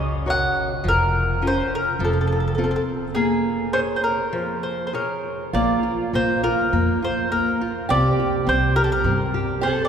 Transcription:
Already playing: C#2 C#3 C#5
0.26 F#4 A#4 C#5 F#5
0.84 F1 F3
0.88 A#4
1.42 C#4 F4 A#4
1.47 C5
1.75 A#4
1.99 F1 F3
2.04 A4
2.13 A4
2.21 A4
2.27 A4
2.32 A4
2.40 A4
2.48 A4
2.55 C4 F4 A4
2.59 A4
2.64 A4
2.71 A4
2.76 A4
3.15 A#3 G#4
3.73 G#4 A#4 C5 C#5
3.96 C5
4.04 A#4
4.33 F3
4.63 C5
4.87 C5
4.93 G#4 A#4 C#5
5.53 A#1 A#3 F4 D5
5.83 F4
6.13 A#1 A#3 C5
6.43 F4 A#4
6.73 F2 A#3
7.02 F4 C5
7.32 A#3 A#4
7.61 F4
7.89 C2 C4 G4 D5
8.20 G4
8.47 C2 C4 C5
8.76 G4 A#4
8.84 A4
8.92 A#4
9.04 G2 C4
9.34 G4
9.61 C4 A4 C5
9.85 D5

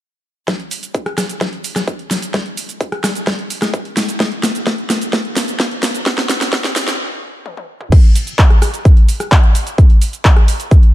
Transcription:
0.48 kick, snare, closed hi-hat, shaker
0.60 closed hi-hat
0.71 open hi-hat, shaker
0.83 closed hi-hat, shaker
0.94 kick, closed hi-hat, shaker
1.06 cross-stick, closed hi-hat
1.18 cross-stick, snare, open hi-hat, shaker
1.29 closed hi-hat, shaker
1.41 kick, snare, closed hi-hat, shaker
1.53 closed hi-hat
1.64 open hi-hat, shaker
1.76 cross-stick, snare, closed hi-hat, shaker
1.88 kick, closed hi-hat, shaker
1.99 closed hi-hat
2.11 snare, open hi-hat, shaker
2.22 closed hi-hat, shaker
2.34 kick, snare, closed hi-hat, shaker
2.46 closed hi-hat
2.57 open hi-hat, shaker
2.69 closed hi-hat, shaker
2.81 kick, closed hi-hat, shaker
2.92 cross-stick, closed hi-hat
3.04 cross-stick, snare, open hi-hat, shaker
3.15 closed hi-hat, shaker
3.27 kick, snare, closed hi-hat, shaker
3.39 closed hi-hat
3.50 open hi-hat, shaker
3.62 cross-stick, snare, closed hi-hat, shaker
3.74 kick, closed hi-hat, shaker
3.85 closed hi-hat
3.97 snare, open hi-hat, shaker
4.09 closed hi-hat, shaker
4.20 kick, snare, closed hi-hat, shaker
4.32 closed hi-hat
4.43 snare, open hi-hat, shaker
4.55 closed hi-hat, shaker
4.67 kick, snare, closed hi-hat, shaker
4.78 closed hi-hat
4.90 snare, open hi-hat, shaker
5.02 closed hi-hat, shaker
5.13 kick, snare, closed hi-hat, shaker
5.25 closed hi-hat
5.36 snare, open hi-hat, shaker
5.48 closed hi-hat, shaker
5.60 kick, snare, closed hi-hat, shaker
5.71 closed hi-hat
5.83 snare, open hi-hat, shaker
5.95 closed hi-hat, shaker
6.06 kick, snare, closed hi-hat, shaker
6.18 snare, closed hi-hat
6.29 snare, open hi-hat, shaker
6.41 snare, open hi-hat, shaker
6.53 kick, snare, closed hi-hat, shaker
6.64 snare, closed hi-hat
6.76 snare, open hi-hat, shaker
6.88 snare, closed hi-hat, shaker
7.46 high tom
7.57 high tom
7.81 mid tom
7.92 kick, closed hi-hat, crash, shaker
8.04 closed hi-hat
8.15 open hi-hat, shaker
8.27 closed hi-hat, shaker
8.39 kick, clap, closed hi-hat, shaker
8.50 cross-stick, closed hi-hat
8.62 cross-stick, open hi-hat, shaker
8.74 closed hi-hat, shaker
8.85 kick, closed hi-hat, shaker
8.97 closed hi-hat
9.09 open hi-hat, shaker
9.20 cross-stick, closed hi-hat, shaker
9.32 kick, clap, closed hi-hat, shaker
9.43 closed hi-hat
9.55 open hi-hat, shaker
9.67 closed hi-hat, shaker
9.78 kick, closed hi-hat, shaker
9.90 closed hi-hat
10.02 open hi-hat, shaker
10.13 closed hi-hat, shaker
10.25 kick, clap, closed hi-hat, shaker
10.36 cross-stick, closed hi-hat
10.48 open hi-hat, shaker
10.60 closed hi-hat, shaker
10.71 kick, closed hi-hat, shaker
10.83 closed hi-hat

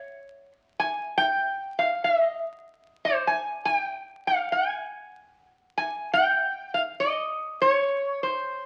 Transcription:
Already playing: C#5
0.80 G#5
1.18 G5
1.79 F5
2.04 E5
2.21 D#5
3.05 C5
3.27 G#5
3.65 G#5
3.76 G5
4.27 F5
4.52 G#5
5.78 G#5
6.13 G5
6.74 F5
7.00 D#5
7.62 C#5
8.23 C5

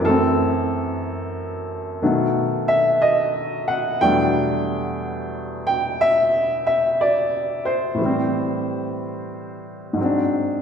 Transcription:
0.00 F#2 E3
0.05 A3 A4
0.09 C4
2.02 B2 D#3 F#3 A3
2.68 E5
3.02 D#5
3.68 F#5
4.01 E2 B2 F#3 G3 A3 D4 G5
5.67 G5
6.01 E5
6.67 E5
7.01 D5
7.65 C5
7.94 A2 E3
8.02 G3 C4
9.93 G#2 F#3
10.00 C4 D4

